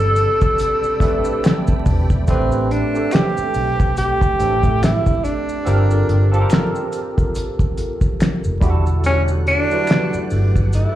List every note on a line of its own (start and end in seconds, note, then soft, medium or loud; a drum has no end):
0.00 0.26 G1 medium
0.00 2.24 C3 medium
0.00 2.25 G3 medium
0.00 2.25 D4 medium
0.00 1.82 A4 loud
0.00 2.25 B4 medium
0.16 closed hi-hat medium
0.16 maracas soft
0.41 kick medium
0.41 maracas soft
0.59 closed hi-hat loud
0.59 maracas medium
0.83 maracas soft
1.00 2.14 A3 medium
1.00 2.14 C4 medium
1.00 2.15 D4 medium
1.00 2.15 G4 medium
1.00 2.16 B4 medium
1.00 1.24 D5 medium
1.00 kick medium
1.00 closed hi-hat medium
1.00 maracas soft
1.25 1.42 E5 medium
1.25 maracas soft
1.44 1.67 G5 medium
1.44 finger snap medium
1.44 snare loud
1.44 closed hi-hat medium
1.44 maracas medium
1.47 finger snap loud
1.67 2.24 A5 medium
1.67 kick medium
1.67 maracas soft
1.86 2.21 E1 medium
1.86 kick medium
1.86 open hi-hat soft
1.86 maracas soft
2.10 kick loud
2.10 maracas soft
2.27 2.83 A1 medium
2.27 2.85 A3 medium
2.27 2.85 C4 medium
2.27 2.73 C4 medium
2.27 2.86 D4 medium
2.27 2.86 G4 medium
2.27 2.87 B4 medium
2.27 kick medium
2.27 closed hi-hat medium
2.27 maracas medium
2.52 maracas soft
2.71 3.15 D4 medium
2.71 closed hi-hat medium
2.94 4.23 A3 medium
2.94 4.24 C4 medium
2.94 4.24 D4 medium
2.94 4.24 G4 medium
2.94 4.25 A4 medium
2.94 maracas soft
3.11 3.97 G4 loud
3.11 finger snap medium
3.11 snare loud
3.11 closed hi-hat medium
3.11 maracas medium
3.16 finger snap medium
3.37 muted fingered electric bass stroke soft
3.37 maracas soft
3.54 4.10 B1 medium
3.54 open hi-hat soft
3.54 maracas soft
3.80 kick medium
3.80 maracas soft
3.97 4.85 G4 loud
3.97 closed hi-hat medium
3.97 maracas medium
4.21 kick medium
4.21 maracas soft
4.39 4.60 A1 medium
4.39 5.52 A3 medium
4.39 5.53 C4 medium
4.39 5.53 D4 medium
4.39 5.53 G4 medium
4.39 5.54 A4 medium
4.39 closed hi-hat medium
4.39 maracas soft
4.63 4.98 A2 medium
4.63 kick medium
4.63 maracas soft
4.83 5.26 E4 medium
4.83 finger snap medium
4.83 snare loud
4.83 closed hi-hat medium
4.83 maracas medium
4.85 finger snap medium
5.06 kick medium
5.06 maracas soft
5.25 6.51 D4 medium
5.25 closed hi-hat soft
5.25 maracas soft
5.49 maracas soft
5.65 6.01 G1 loud
5.65 6.23 C4 medium
5.65 6.24 F4 medium
5.65 6.24 G4 medium
5.65 6.23 A4 medium
5.65 6.24 A#4 loud
5.65 closed hi-hat medium
5.65 maracas medium
5.91 maracas soft
6.09 6.43 G1 medium
6.09 closed hi-hat medium
6.32 7.77 C4 medium
6.32 7.77 F4 medium
6.32 7.77 G4 medium
6.32 6.34 A4 medium
6.32 6.39 A4 medium
6.32 maracas soft
6.41 7.81 A#4 medium
6.50 finger snap medium
6.50 snare loud
6.50 closed hi-hat medium
6.50 maracas medium
6.54 finger snap medium
6.75 maracas soft
6.92 closed hi-hat medium
6.92 maracas soft
7.18 kick medium
7.18 maracas soft
7.35 closed hi-hat medium
7.35 maracas medium
7.59 kick medium
7.59 maracas soft
7.78 closed hi-hat medium
7.78 maracas soft
8.01 kick medium
8.01 maracas soft
8.20 finger snap medium
8.20 snare loud
8.20 closed hi-hat medium
8.20 maracas medium
8.23 finger snap medium
8.44 8.59 F1 medium
8.44 maracas soft
8.60 9.51 E1 medium
8.60 9.55 D3 medium
8.60 9.54 G3 medium
8.60 9.55 E4 medium
8.60 9.56 F#4 medium
8.60 8.70 G4 medium
8.60 kick loud
8.60 closed hi-hat medium
8.60 maracas soft
8.70 9.59 A4 loud
8.86 maracas soft
9.03 10.95 D3 medium
9.03 10.95 G3 medium
9.03 10.95 A3 medium
9.03 9.22 C#4 medium
9.03 10.95 F#5 medium
9.03 closed hi-hat medium
9.03 maracas medium
9.28 maracas soft
9.47 10.28 D4 loud
9.47 closed hi-hat medium
9.70 9.76 F#3 medium
9.70 10.95 D4 medium
9.70 10.95 E4 medium
9.70 10.95 F#4 medium
9.70 10.95 B4 medium
9.70 maracas soft
9.76 10.95 G3 medium
9.87 finger snap medium
9.87 snare loud
9.87 closed hi-hat medium
9.87 maracas medium
9.92 finger snap medium
10.13 muted fingered electric bass stroke soft
10.13 maracas soft
10.30 10.86 G1 medium
10.30 open hi-hat soft
10.30 maracas soft
10.56 kick medium
10.56 maracas soft
10.73 10.95 E4 medium
10.73 closed hi-hat medium
10.73 maracas medium